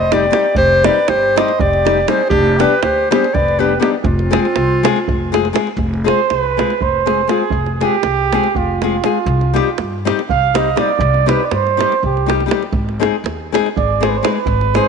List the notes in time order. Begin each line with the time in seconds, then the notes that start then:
Already playing: F1 D#5
0.00 C5
0.12 G3 C4 D#4 G4 D5, davul high
0.31 G3 C4 D#4 G4, davul high
0.55 F1 G4 C5, davul low
0.83 G3 C4 D#4 G4 B4 D5, davul high
1.08 G1 G4 C5, davul high
1.36 G3 C4 D#4 G4 C5 D#5, davul high
1.48 davul high
1.60 F1 G4 D5, davul low
1.73 davul high
1.85 G3 C4 D#4 G4, davul high
2.08 G3 C4 D#4 G4 G#4 C5, davul high
2.29 F1 D4 G4, davul low
2.58 G3 B3 D4 G4 B4, davul high
2.82 D2 G4 C5, davul high
3.11 G3 B3 D4 G4 G#4 C5, davul high
3.24 davul high
3.34 F1 B4 D5, davul low
3.48 davul high
3.59 G3 B3 D4 G4 B4
3.80 G3 B3 D4 D#4 G4, davul high
4.03 F1 C4 F4, davul low
4.19 davul high
4.31 G#3 C4 F4 G#4, davul high
4.45 davul high
4.56 C2, davul high
4.83 G#3 C4 F4 G#4, davul high
4.96 davul high
5.08 F1, davul low
5.32 G#3 C4 F4 G#4, davul high
5.45 davul high
5.53 G#3 C4 F4 G#4, davul high
5.67 davul high
5.77 F1, davul low
5.94 davul high
6.04 G#3 C4 F4 G#4 C5, davul high
6.29 C2 C5, davul high
6.40 B4
6.57 G#3 C4 F4 G#4, davul high
6.70 davul high
6.81 F1 C5, davul low
7.06 G#3 C4 F4 G#4, davul high
7.28 G#3 C4 F4 G#4, davul high
7.51 F1, davul low
7.66 davul high
7.75 G#4
7.81 G#3 C4 F4 G4 G#4, davul high
8.03 C2, davul high
8.32 G#3 C4 F4 G#4, davul high
8.44 davul high
8.55 F1 F4, davul low
8.82 G#3 C4 F4 G#4, davul high
9.04 G#3 C4 F4 G#4, davul high
9.26 C2, davul low
9.41 davul high
9.54 G3 C4 D#4 G4, davul high
9.78 G2, davul high
10.05 G3 C4 D#4 G4, davul high
10.19 davul high
10.30 C2 F5, davul low
10.54 G3 C4 D#4 G4 D#5, davul high
10.76 G3 C4 D#4 G4, davul high
10.80 D5
10.99 C2, davul low
11.14 davul high
11.26 G3 C4 D#4 G4 B4, davul high
11.45 D5
11.51 G2 C5, davul high
11.67 davul high
11.77 G3 C4 D#4 G4, davul high
11.92 davul high
12.03 C2 G4, davul low
12.17 davul high
12.26 G3 C4 D#4 G4, davul high
12.40 davul high
12.46 G3 C4 D#4 G4
12.51 davul high
12.63 davul high
12.72 G#1, davul low
12.89 davul high
13.00 G#3 C4 D#4 G#4, davul high
13.24 D#2, davul high
13.52 G#3 C4 D#4 G#4, davul high
13.66 davul high
13.77 G#1 D5, davul low
14.01 G#3 C4 D#4 G#4, davul high
14.05 B4 C5
14.16 C5
14.23 G#3 C4 D#4 G#4, davul high
14.27 B4
14.46 G#1, davul low
14.61 davul high
14.74 G#3 C4 D#4 G#4 C5, davul high